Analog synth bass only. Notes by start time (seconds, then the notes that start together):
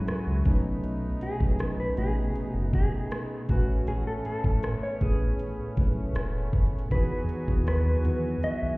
0.08 C#2
0.27 C#2
0.46 B1
1.40 B1
1.98 A1
2.36 F#1
2.54 F#1
3.49 A1
3.87 A1
4.26 A2
4.44 A2
5.01 A1
5.59 B1
5.77 B1
6.15 E1
6.53 F#1
6.91 E2
7.48 D#2
8.05 E2
8.43 B1
8.62 B1